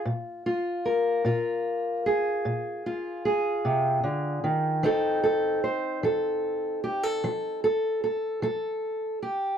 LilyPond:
\new Staff \with { instrumentName = "Steel-string acoustic guitar" } { \time 12/8 \key f \dorian \tempo 4. = 50 << { r8 f'8 bes'8 f'4 aes'4 f'8 aes'2 | <c' ees' a'>8 a'8 c''8 a'4 g'16 a'8. a'8 a'8 a'4 g'8 | } \\ { bes,4 r8 bes,4 r8 bes,4 r8 c8 d8 ees8 | f4 r8 f4 r8 f4 r8 f4 r8 | } >> }